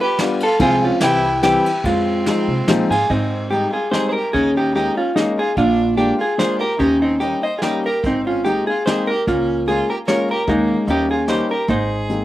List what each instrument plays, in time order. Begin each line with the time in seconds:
0.01 violin G4, hollow-body jazz guitar B4
0.19 upright piano G3 B3 D4 F4, snare, ride
0.40 violin F4, hollow-body jazz guitar A4, ride
0.59 upright bass C2, upright piano F3 G#3 C4 F4, hollow-body jazz guitar C4 G#4, violin F4, kick, ride
0.83 violin C#4, hollow-body jazz guitar F4
1.00 upright bass C2, upright piano E3 G3 C4 E4, hollow-body jazz guitar E4 G4, violin E4, snare, ride
1.43 upright piano E3 G3 C4 E4, violin E4, hollow-body jazz guitar G4, snare, ride
1.66 ride
1.84 upright bass F2, hollow-body jazz guitar G#3 F4, violin C4, kick, ride
2.26 upright piano F3 G#3 C4 D#4, snare, ride
2.48 upright bass C3
2.68 upright bass A#2, upright piano F3 G#3 C4 D#4, snare, ride
2.90 upright bass G#2, violin F4, hollow-body jazz guitar G#4, ride
3.10 upright bass G#2, violin C4, hollow-body jazz guitar C4 D#4, kick, closed hi-hat
3.50 upright piano G3 G#3 C4 D#4, violin D#4, hollow-body jazz guitar G4, closed hi-hat
3.72 violin F4, hollow-body jazz guitar G#4
3.91 upright piano G3 G#3 C4 D#4, violin G#4, hollow-body jazz guitar C5, snare, closed hi-hat
4.09 violin G#4, hollow-body jazz guitar A#4 C5
4.15 violin G4
4.33 upright bass D#2, hollow-body jazz guitar C#4 G#4, violin D#4, kick, closed hi-hat
4.55 violin D#4, hollow-body jazz guitar G4
4.74 upright piano G#3 A#3 C#4 D#4, violin D#4, hollow-body jazz guitar G4, closed hi-hat
4.97 violin C#4, hollow-body jazz guitar F4
5.15 upright piano G#3 A#3 C#4 D#4, violin A#3, hollow-body jazz guitar D#4, snare, closed hi-hat
5.38 violin F4, hollow-body jazz guitar G#4
5.56 upright bass A#1, violin D4, hollow-body jazz guitar D4 F4, kick, closed hi-hat
5.96 upright piano G#3 A#3 D4 F4, violin D4, hollow-body jazz guitar G4, closed hi-hat
6.19 violin F4, hollow-body jazz guitar G#4
6.37 upright piano G#3 A#3 D4 F4, violin G#4, hollow-body jazz guitar C5, snare, closed hi-hat
6.58 violin G4, hollow-body jazz guitar A#4
6.78 upright bass D#2, hollow-body jazz guitar C#4 G4, violin D#4, kick, closed hi-hat
7.01 violin C4, hollow-body jazz guitar D#4
7.20 upright piano G3 A#3 C#4 D#4, violin D#4, hollow-body jazz guitar G4, closed hi-hat
7.43 violin C5, hollow-body jazz guitar D#5
7.57 violin F4, hollow-body jazz guitar G#4
7.62 upright piano G3 A#3 C#4 D#4, violin D#4, hollow-body jazz guitar G4, snare, closed hi-hat
7.85 violin G4, hollow-body jazz guitar A#4
8.04 upright bass G#1, violin C4, hollow-body jazz guitar C4 D#4, kick, closed hi-hat
8.27 violin C#4, hollow-body jazz guitar F4
8.45 upright piano G#3 A#3 C4 D#4, violin D#4, hollow-body jazz guitar G4, closed hi-hat
8.67 violin F4, hollow-body jazz guitar G#4
8.86 upright piano G#3 A#3 C4 D#4, violin G#4, hollow-body jazz guitar C5, snare, closed hi-hat
9.07 violin G4, hollow-body jazz guitar A#4
9.27 upright bass C#2, hollow-body jazz guitar A#3 F4, violin C#4, kick, closed hi-hat
9.68 upright piano G#3 A#3 C#4 F4, violin F4, hollow-body jazz guitar G#4, closed hi-hat
9.90 violin G4, hollow-body jazz guitar A#4
10.06 upright piano G#3 A#3 C#4 F4, violin A#4, hollow-body jazz guitar C#5, snare, closed hi-hat
10.31 violin G4, hollow-body jazz guitar A#4
10.47 upright bass D#2, upright piano G#3 A#3 C#4 D#4, hollow-body jazz guitar G#3 D#4, violin A#3, kick, closed hi-hat
10.87 upright bass D#2, upright piano G3 A#3 C#4 D#4, hollow-body jazz guitar C#4 G4, violin D#4, closed hi-hat
11.11 violin F4, hollow-body jazz guitar G#4
11.28 upright piano G3 A#3 C#4 D#4, violin G4, hollow-body jazz guitar C5, snare, closed hi-hat
11.51 violin G4, hollow-body jazz guitar A#4
11.68 upright bass G#1, hollow-body jazz guitar D#4 C5, violin G#4, kick, closed hi-hat
12.09 upright piano G#3 A#3 C4 D#4, closed hi-hat